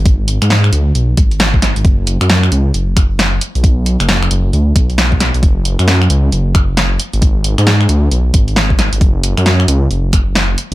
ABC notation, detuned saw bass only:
X:1
M:4/4
L:1/16
Q:"Swing 16ths" 1/4=134
K:Bdor
V:1 name="Detuned saw bass" clef=bass
G,,,3 G,,3 D,,2 B,,,2 G,,,4- G,,, G,,, | F,,,3 F,,3 C,,2 F,,,6 z B,,,- | B,,,3 F,,,3 F,,,2 D,,2 B,,,4- B,,, B,,, | F,,,3 F,,3 C,,2 F,,,6 z G,,,- |
G,,,3 G,,3 D,,2 B,,,2 G,,,4- G,,, G,,, | F,,,3 F,,3 C,,2 F,,,6 z2 |]